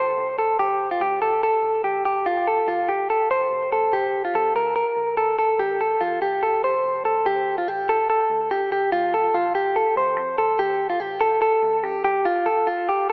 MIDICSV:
0, 0, Header, 1, 3, 480
1, 0, Start_track
1, 0, Tempo, 416667
1, 681, Time_signature, 4, 2, 24, 8
1, 15119, End_track
2, 0, Start_track
2, 0, Title_t, "Clean electric guitar"
2, 0, Program_c, 0, 27
2, 0, Note_on_c, 0, 72, 68
2, 421, Note_off_c, 0, 72, 0
2, 444, Note_on_c, 0, 69, 59
2, 679, Note_off_c, 0, 69, 0
2, 684, Note_on_c, 0, 67, 85
2, 1021, Note_off_c, 0, 67, 0
2, 1051, Note_on_c, 0, 65, 64
2, 1166, Note_off_c, 0, 65, 0
2, 1167, Note_on_c, 0, 67, 67
2, 1398, Note_off_c, 0, 67, 0
2, 1402, Note_on_c, 0, 69, 73
2, 1637, Note_off_c, 0, 69, 0
2, 1650, Note_on_c, 0, 69, 77
2, 2097, Note_off_c, 0, 69, 0
2, 2121, Note_on_c, 0, 67, 63
2, 2352, Note_off_c, 0, 67, 0
2, 2366, Note_on_c, 0, 67, 73
2, 2603, Note_off_c, 0, 67, 0
2, 2605, Note_on_c, 0, 65, 84
2, 2843, Note_off_c, 0, 65, 0
2, 2851, Note_on_c, 0, 69, 70
2, 3086, Note_off_c, 0, 69, 0
2, 3086, Note_on_c, 0, 65, 74
2, 3324, Note_off_c, 0, 65, 0
2, 3324, Note_on_c, 0, 67, 72
2, 3562, Note_off_c, 0, 67, 0
2, 3571, Note_on_c, 0, 69, 68
2, 3806, Note_off_c, 0, 69, 0
2, 3811, Note_on_c, 0, 72, 74
2, 4257, Note_off_c, 0, 72, 0
2, 4291, Note_on_c, 0, 69, 70
2, 4526, Note_off_c, 0, 69, 0
2, 4529, Note_on_c, 0, 67, 85
2, 4864, Note_off_c, 0, 67, 0
2, 4892, Note_on_c, 0, 65, 63
2, 5007, Note_off_c, 0, 65, 0
2, 5013, Note_on_c, 0, 69, 68
2, 5246, Note_off_c, 0, 69, 0
2, 5250, Note_on_c, 0, 70, 69
2, 5466, Note_off_c, 0, 70, 0
2, 5480, Note_on_c, 0, 70, 79
2, 5932, Note_off_c, 0, 70, 0
2, 5960, Note_on_c, 0, 69, 69
2, 6190, Note_off_c, 0, 69, 0
2, 6204, Note_on_c, 0, 69, 74
2, 6443, Note_off_c, 0, 69, 0
2, 6445, Note_on_c, 0, 67, 96
2, 6683, Note_off_c, 0, 67, 0
2, 6690, Note_on_c, 0, 69, 69
2, 6920, Note_on_c, 0, 65, 73
2, 6926, Note_off_c, 0, 69, 0
2, 7159, Note_off_c, 0, 65, 0
2, 7163, Note_on_c, 0, 67, 73
2, 7403, Note_off_c, 0, 67, 0
2, 7405, Note_on_c, 0, 69, 67
2, 7643, Note_off_c, 0, 69, 0
2, 7650, Note_on_c, 0, 72, 73
2, 8097, Note_off_c, 0, 72, 0
2, 8124, Note_on_c, 0, 69, 66
2, 8363, Note_off_c, 0, 69, 0
2, 8364, Note_on_c, 0, 67, 90
2, 8701, Note_off_c, 0, 67, 0
2, 8732, Note_on_c, 0, 65, 71
2, 8848, Note_off_c, 0, 65, 0
2, 8848, Note_on_c, 0, 67, 80
2, 9085, Note_off_c, 0, 67, 0
2, 9091, Note_on_c, 0, 69, 77
2, 9313, Note_off_c, 0, 69, 0
2, 9327, Note_on_c, 0, 69, 80
2, 9775, Note_off_c, 0, 69, 0
2, 9804, Note_on_c, 0, 67, 70
2, 10033, Note_off_c, 0, 67, 0
2, 10046, Note_on_c, 0, 67, 76
2, 10275, Note_off_c, 0, 67, 0
2, 10280, Note_on_c, 0, 65, 103
2, 10520, Note_off_c, 0, 65, 0
2, 10529, Note_on_c, 0, 69, 79
2, 10764, Note_on_c, 0, 65, 78
2, 10765, Note_off_c, 0, 69, 0
2, 10996, Note_off_c, 0, 65, 0
2, 11001, Note_on_c, 0, 67, 80
2, 11241, Note_off_c, 0, 67, 0
2, 11244, Note_on_c, 0, 69, 75
2, 11482, Note_off_c, 0, 69, 0
2, 11489, Note_on_c, 0, 72, 76
2, 11936, Note_off_c, 0, 72, 0
2, 11961, Note_on_c, 0, 69, 71
2, 12200, Note_on_c, 0, 67, 89
2, 12201, Note_off_c, 0, 69, 0
2, 12539, Note_off_c, 0, 67, 0
2, 12552, Note_on_c, 0, 65, 70
2, 12671, Note_off_c, 0, 65, 0
2, 12671, Note_on_c, 0, 67, 83
2, 12909, Note_on_c, 0, 69, 79
2, 12917, Note_off_c, 0, 67, 0
2, 13138, Note_off_c, 0, 69, 0
2, 13152, Note_on_c, 0, 69, 87
2, 13631, Note_off_c, 0, 69, 0
2, 13631, Note_on_c, 0, 67, 77
2, 13861, Note_off_c, 0, 67, 0
2, 13875, Note_on_c, 0, 67, 78
2, 14116, Note_on_c, 0, 65, 105
2, 14120, Note_off_c, 0, 67, 0
2, 14354, Note_on_c, 0, 69, 77
2, 14360, Note_off_c, 0, 65, 0
2, 14597, Note_on_c, 0, 65, 84
2, 14600, Note_off_c, 0, 69, 0
2, 14841, Note_off_c, 0, 65, 0
2, 14846, Note_on_c, 0, 67, 84
2, 15082, Note_off_c, 0, 67, 0
2, 15119, End_track
3, 0, Start_track
3, 0, Title_t, "Picked electric bass"
3, 0, Program_c, 1, 34
3, 0, Note_on_c, 1, 33, 79
3, 163, Note_off_c, 1, 33, 0
3, 202, Note_on_c, 1, 36, 75
3, 435, Note_on_c, 1, 29, 73
3, 453, Note_off_c, 1, 36, 0
3, 642, Note_off_c, 1, 29, 0
3, 678, Note_on_c, 1, 31, 87
3, 1087, Note_off_c, 1, 31, 0
3, 1155, Note_on_c, 1, 38, 78
3, 1361, Note_off_c, 1, 38, 0
3, 1405, Note_on_c, 1, 34, 79
3, 1709, Note_off_c, 1, 34, 0
3, 1874, Note_on_c, 1, 31, 85
3, 2081, Note_off_c, 1, 31, 0
3, 2114, Note_on_c, 1, 34, 80
3, 2320, Note_off_c, 1, 34, 0
3, 2354, Note_on_c, 1, 29, 73
3, 2969, Note_off_c, 1, 29, 0
3, 3077, Note_on_c, 1, 36, 73
3, 3317, Note_off_c, 1, 36, 0
3, 3317, Note_on_c, 1, 33, 77
3, 3625, Note_off_c, 1, 33, 0
3, 3804, Note_on_c, 1, 29, 79
3, 4006, Note_off_c, 1, 29, 0
3, 4039, Note_on_c, 1, 28, 79
3, 4283, Note_off_c, 1, 28, 0
3, 4283, Note_on_c, 1, 33, 77
3, 4486, Note_off_c, 1, 33, 0
3, 4522, Note_on_c, 1, 34, 86
3, 4930, Note_off_c, 1, 34, 0
3, 5001, Note_on_c, 1, 41, 77
3, 5205, Note_off_c, 1, 41, 0
3, 5242, Note_on_c, 1, 38, 75
3, 5548, Note_off_c, 1, 38, 0
3, 5721, Note_on_c, 1, 34, 88
3, 5957, Note_off_c, 1, 34, 0
3, 5957, Note_on_c, 1, 38, 76
3, 6163, Note_off_c, 1, 38, 0
3, 6202, Note_on_c, 1, 31, 77
3, 6406, Note_off_c, 1, 31, 0
3, 6436, Note_on_c, 1, 33, 88
3, 6847, Note_off_c, 1, 33, 0
3, 6919, Note_on_c, 1, 40, 74
3, 7124, Note_off_c, 1, 40, 0
3, 7160, Note_on_c, 1, 36, 82
3, 7365, Note_off_c, 1, 36, 0
3, 7392, Note_on_c, 1, 29, 90
3, 7600, Note_off_c, 1, 29, 0
3, 7636, Note_on_c, 1, 29, 84
3, 7842, Note_off_c, 1, 29, 0
3, 7877, Note_on_c, 1, 28, 76
3, 8083, Note_off_c, 1, 28, 0
3, 8106, Note_on_c, 1, 36, 68
3, 8317, Note_off_c, 1, 36, 0
3, 8353, Note_on_c, 1, 38, 100
3, 8765, Note_off_c, 1, 38, 0
3, 8844, Note_on_c, 1, 33, 73
3, 9047, Note_off_c, 1, 33, 0
3, 9082, Note_on_c, 1, 29, 80
3, 9388, Note_off_c, 1, 29, 0
3, 9561, Note_on_c, 1, 38, 87
3, 9799, Note_off_c, 1, 38, 0
3, 9799, Note_on_c, 1, 41, 95
3, 10004, Note_off_c, 1, 41, 0
3, 10034, Note_on_c, 1, 36, 84
3, 10241, Note_off_c, 1, 36, 0
3, 10274, Note_on_c, 1, 38, 108
3, 10685, Note_off_c, 1, 38, 0
3, 10761, Note_on_c, 1, 33, 78
3, 10965, Note_off_c, 1, 33, 0
3, 10991, Note_on_c, 1, 29, 88
3, 11301, Note_off_c, 1, 29, 0
3, 11476, Note_on_c, 1, 38, 94
3, 11708, Note_off_c, 1, 38, 0
3, 11708, Note_on_c, 1, 41, 92
3, 11918, Note_off_c, 1, 41, 0
3, 11960, Note_on_c, 1, 36, 91
3, 12164, Note_off_c, 1, 36, 0
3, 12204, Note_on_c, 1, 38, 104
3, 12611, Note_off_c, 1, 38, 0
3, 12673, Note_on_c, 1, 33, 73
3, 12881, Note_off_c, 1, 33, 0
3, 12912, Note_on_c, 1, 29, 79
3, 13223, Note_off_c, 1, 29, 0
3, 13393, Note_on_c, 1, 38, 99
3, 13631, Note_off_c, 1, 38, 0
3, 13631, Note_on_c, 1, 41, 95
3, 13840, Note_off_c, 1, 41, 0
3, 13871, Note_on_c, 1, 36, 93
3, 14081, Note_off_c, 1, 36, 0
3, 15119, End_track
0, 0, End_of_file